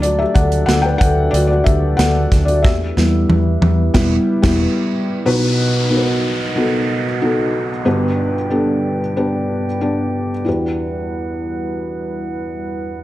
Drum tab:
CC |----------------|--------x--x----|----------------|----------------|
HH |x-xxx-x-x-x-x-xx|----------------|----------------|----------------|
SD |----o-------o-o-|o-o-----o--o----|----------------|----------------|
T1 |----------------|----o-o---------|----------------|----------------|
BD |--o---o---o---o-|o-------o--o----|----------------|----------------|

CC |----------------|
HH |----------------|
SD |----------------|
T1 |----------------|
BD |----------------|